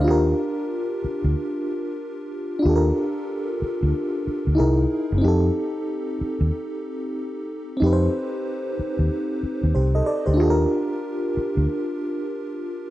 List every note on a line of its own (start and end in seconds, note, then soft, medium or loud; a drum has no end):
0.00 2.57 D4 medium
0.00 0.25 C5 medium
0.00 0.24 F5 medium
0.04 0.32 D#2 loud
0.04 2.59 F4 medium
0.04 2.60 G4 medium
0.11 2.62 A#4 medium
1.04 muted fingered electric bass stroke medium
1.24 1.33 D2 medium
2.59 4.51 D4 medium
2.59 4.52 F4 medium
2.65 2.90 D#2 loud
2.65 4.54 G4 medium
2.65 2.74 A4 medium
2.76 4.58 A#4 medium
3.62 muted fingered electric bass stroke medium
3.83 3.91 D2 medium
4.27 muted fingered electric bass stroke soft
4.47 4.56 D2 medium
4.55 5.20 D#4 medium
4.55 5.21 E4 medium
4.55 5.22 G#4 medium
4.60 4.84 C2 loud
4.60 5.23 A#4 medium
5.12 5.21 F#1 medium
5.18 7.74 C4 medium
5.18 7.75 D#4 medium
5.24 5.49 F2 loud
5.24 7.77 G4 medium
5.24 7.79 A4 medium
6.21 muted fingered electric bass stroke soft
6.41 6.49 D#2 medium
7.77 9.68 C4 medium
7.77 9.69 D#4 medium
7.82 8.07 F2 loud
7.82 9.39 G4 medium
7.86 7.91 B4 medium
7.93 9.44 C5 medium
8.79 muted fingered electric bass stroke medium
8.99 9.08 D#2 medium
9.43 muted fingered electric bass stroke soft
9.63 9.72 D#2 medium
9.75 10.00 C2 loud
9.75 9.93 G4 medium
9.75 9.93 C5 medium
9.95 10.06 A4 medium
9.95 10.05 D#5 medium
10.06 10.25 A4 medium
10.06 10.25 D5 medium
10.26 10.39 D2 medium
10.26 10.39 G4 medium
10.26 10.56 C5 medium
10.34 12.90 D4 medium
10.34 12.90 F4 medium
10.39 10.65 D#2 loud
10.39 12.90 G4 medium
10.39 10.48 A4 medium
10.50 12.90 A#4 loud
11.37 muted fingered electric bass stroke medium
11.57 11.66 D2 medium